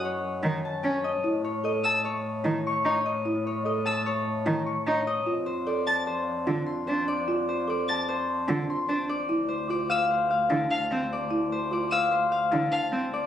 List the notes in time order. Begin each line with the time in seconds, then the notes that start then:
Already playing: F#2 A4 D#5 F#5 A5
0.05 C#5
0.43 D#3
0.65 A5
0.84 C#4 C#5
1.04 D#5
1.23 A2 E4
1.44 C#5
1.64 A4 D#5
1.84 A5 E6
2.05 C#5
2.45 D#3 E4
2.67 C#6
2.85 D#4 C#5
3.06 D#5
3.25 E4
3.47 C#5
3.65 A4 D#5
3.85 A5 E6
4.06 C#5
4.46 D#3 E4
4.66 C#6
4.86 D#4 C#5
5.07 D#5
5.26 F2 F4
5.46 C5
5.67 A4 D5
5.87 A5 A6
6.07 C5
6.47 D3 F4
6.66 C6
6.87 D4 C5
7.08 D5
7.28 F4
7.49 C5
7.68 A4 D5
7.88 A5 A6
8.09 C5
8.48 D3 F4
8.70 C6
8.89 D4 C5
9.09 D5
9.29 D2 E4
9.48 C5
9.70 F4 D5
9.90 F5 E6
10.10 C5
10.30 F5
10.50 D3 E4
10.70 F5 A5
10.91 C4 C5
11.13 D5
11.31 E4
11.52 C5
11.71 F4 D5
11.91 F5 E6
12.11 C5
12.32 F5
12.52 D3 E4
12.71 F5 A5
12.92 C4 C5
13.14 D5